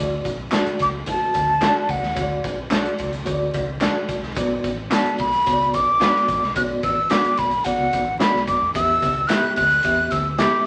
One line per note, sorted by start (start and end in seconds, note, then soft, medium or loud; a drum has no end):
0.00 0.19 D2 loud
0.00 0.36 A3 medium
0.00 0.36 F#4 medium
0.00 0.36 D5 medium
0.24 0.46 B1 medium
0.24 kick medium
0.24 closed hi-hat medium
0.24 tambourine soft
0.51 0.91 A3 medium
0.51 0.66 D4 medium
0.51 0.59 E4 medium
0.51 0.66 F#4 medium
0.51 0.66 A4 medium
0.51 0.91 D5 medium
0.51 snare loud
0.51 clap medium
0.51 closed hi-hat medium
0.51 tambourine medium
0.58 0.94 F#4 medium
0.66 muted fingered electric bass stroke soft
0.66 closed hi-hat medium
0.79 1.01 C#2 medium
0.79 0.88 D6 loud
0.79 kick medium
0.79 closed hi-hat medium
0.79 tambourine soft
1.06 1.46 A3 medium
1.06 1.14 E4 medium
1.06 1.46 A4 medium
1.06 1.92 A5 medium
1.06 kick medium
1.06 closed hi-hat medium
1.14 1.49 F#4 medium
1.20 muted fingered electric bass stroke soft
1.34 1.67 D2 medium
1.34 kick medium
1.34 closed hi-hat medium
1.34 tambourine medium
1.60 2.00 A3 medium
1.60 1.75 D4 medium
1.60 2.00 F#4 medium
1.60 1.76 F#4 medium
1.60 1.76 A4 medium
1.60 1.68 C#5 medium
1.60 snare medium
1.60 clap medium
1.60 closed hi-hat medium
1.60 tambourine medium
1.68 2.04 D5 medium
1.89 2.00 C#2 medium
1.89 2.45 F#5 medium
1.89 kick medium
1.89 open hi-hat soft
1.89 tambourine medium
2.02 2.13 D#2 medium
2.02 snare soft
2.15 2.38 D2 medium
2.15 2.55 A3 medium
2.15 2.55 F#4 medium
2.15 2.23 C#5 medium
2.15 kick loud
2.15 closed hi-hat loud
2.15 tambourine medium
2.22 2.58 D5 medium
2.44 2.87 B1 medium
2.44 kick medium
2.44 closed hi-hat medium
2.44 tambourine soft
2.70 3.10 A3 medium
2.70 2.85 D4 medium
2.70 3.10 F#4 medium
2.70 2.85 F#4 medium
2.70 2.85 A4 medium
2.70 2.78 C#5 medium
2.70 snare loud
2.70 clap medium
2.70 closed hi-hat medium
2.70 tambourine loud
2.77 3.13 D5 loud
2.86 closed hi-hat medium
2.98 3.21 C#2 medium
2.98 kick medium
2.98 closed hi-hat medium
2.98 tambourine soft
3.13 closed hi-hat soft
3.25 3.48 D2 medium
3.25 3.65 A3 medium
3.25 3.65 F#4 medium
3.25 3.33 C#5 medium
3.25 kick medium
3.25 closed hi-hat medium
3.32 3.68 D5 loud
3.54 3.86 C#2 medium
3.54 kick medium
3.54 closed hi-hat medium
3.54 tambourine medium
3.81 4.20 A3 medium
3.81 3.95 D4 medium
3.81 4.20 F#4 medium
3.81 3.95 F#4 medium
3.81 3.95 A4 medium
3.81 4.20 D5 medium
3.81 snare medium
3.81 clap medium
3.81 closed hi-hat medium
3.81 tambourine medium
4.08 4.20 B1 medium
4.08 kick medium
4.08 closed hi-hat medium
4.08 tambourine medium
4.22 4.33 C2 medium
4.22 snare soft
4.35 4.58 B1 loud
4.35 4.75 B3 medium
4.35 4.75 F#4 medium
4.35 4.75 D5 medium
4.35 kick loud
4.35 closed hi-hat medium
4.35 tambourine medium
4.64 4.85 A1 medium
4.64 kick medium
4.64 closed hi-hat medium
4.64 tambourine soft
4.90 5.30 B3 medium
4.90 5.04 D4 medium
4.90 5.30 F#4 medium
4.90 5.05 F#4 medium
4.90 5.05 B4 medium
4.90 5.30 D5 medium
4.90 5.18 A5 medium
4.90 snare medium
4.90 clap loud
4.90 closed hi-hat medium
4.90 tambourine medium
5.05 muted fingered electric bass stroke soft
5.05 closed hi-hat soft
5.18 5.40 B1 medium
5.18 5.75 B5 loud
5.18 kick medium
5.18 closed hi-hat medium
5.18 tambourine soft
5.33 closed hi-hat soft
5.46 5.74 C#2 medium
5.46 5.85 B3 medium
5.46 5.85 F#4 medium
5.46 5.53 C#5 medium
5.46 kick medium
5.46 closed hi-hat loud
5.46 tambourine soft
5.53 5.88 D5 medium
5.74 6.06 B1 medium
5.74 6.55 D6 loud
5.74 kick medium
5.74 closed hi-hat medium
5.74 tambourine medium
6.00 6.40 B3 medium
6.00 6.14 D4 medium
6.00 6.15 F#4 medium
6.00 6.40 F#4 medium
6.00 6.15 B4 loud
6.00 6.08 C#5 medium
6.00 snare medium
6.00 clap medium
6.00 closed hi-hat medium
6.00 tambourine medium
6.08 6.43 D5 medium
6.16 snare soft
6.28 6.39 A1 medium
6.28 kick medium
6.28 closed hi-hat medium
6.28 tambourine medium
6.43 6.53 C2 medium
6.43 snare soft
6.56 6.77 B1 medium
6.56 6.95 B3 medium
6.56 6.95 F#4 medium
6.56 6.63 C#5 medium
6.56 6.62 F#6 loud
6.56 kick loud
6.56 closed hi-hat medium
6.56 tambourine medium
6.64 6.99 D5 medium
6.83 7.04 A1 medium
6.83 7.12 E6 medium
6.83 kick medium
6.83 closed hi-hat medium
6.83 tambourine soft
7.10 7.50 B3 medium
7.10 7.24 D4 medium
7.10 7.24 F#4 medium
7.10 7.50 F#4 medium
7.10 7.25 B4 medium
7.10 7.50 D5 medium
7.10 7.40 D6 medium
7.10 snare loud
7.10 clap medium
7.10 closed hi-hat medium
7.10 tambourine medium
7.24 muted fingered electric bass stroke soft
7.24 closed hi-hat soft
7.37 7.60 B1 medium
7.37 7.66 B5 medium
7.37 kick medium
7.37 closed hi-hat medium
7.37 tambourine soft
7.51 closed hi-hat soft
7.64 8.05 B3 medium
7.64 8.05 F#4 medium
7.64 8.05 D5 medium
7.64 8.19 F#5 medium
7.64 kick medium
7.64 closed hi-hat medium
7.79 7.90 C#2 medium
7.93 8.04 B1 medium
7.93 kick medium
7.93 closed hi-hat medium
7.93 tambourine medium
8.06 8.17 A1 medium
8.19 8.59 B3 medium
8.19 8.33 D4 medium
8.19 8.59 F#4 medium
8.19 8.34 F#4 medium
8.19 8.34 B4 medium
8.19 8.27 C#5 medium
8.19 8.45 B5 medium
8.19 snare loud
8.19 clap medium
8.19 closed hi-hat medium
8.19 tambourine medium
8.26 8.62 D5 medium
8.34 8.45 B1 medium
8.34 snare soft
8.47 8.58 F#2 medium
8.47 8.73 D6 medium
8.47 kick medium
8.47 closed hi-hat medium
8.47 tambourine medium
8.61 8.72 F2 medium
8.74 8.96 E2 loud
8.74 9.14 B3 medium
8.74 9.14 G4 medium
8.74 9.14 E5 medium
8.74 9.29 E6 medium
8.74 kick loud
8.74 closed hi-hat medium
8.74 tambourine medium
9.02 9.23 C#2 medium
9.02 kick medium
9.02 closed hi-hat medium
9.28 9.68 B3 medium
9.28 9.43 E4 medium
9.28 9.43 G4 medium
9.28 9.69 G4 medium
9.28 9.44 B4 medium
9.28 9.68 E5 medium
9.28 9.56 F#6 medium
9.28 snare loud
9.28 clap medium
9.28 closed hi-hat medium
9.28 tambourine medium
9.44 muted fingered electric bass stroke soft
9.56 9.78 D2 medium
9.56 10.13 F#6 loud
9.56 kick medium
9.56 closed hi-hat medium
9.56 tambourine soft
9.70 closed hi-hat soft
9.83 10.06 E2 medium
9.83 10.23 B3 medium
9.83 10.23 G4 medium
9.83 10.23 E5 medium
9.83 kick medium
9.83 closed hi-hat medium
9.83 tambourine soft
10.11 10.44 D2 medium
10.11 10.40 E6 medium
10.11 kick medium
10.11 closed hi-hat medium
10.11 tambourine medium
10.38 10.66 B3 medium
10.38 10.52 E4 medium
10.38 10.66 G4 medium
10.38 10.53 G4 medium
10.38 10.53 B4 medium
10.38 10.66 E5 medium
10.38 10.66 D6 medium
10.38 snare medium
10.38 clap medium
10.38 closed hi-hat medium
10.38 tambourine medium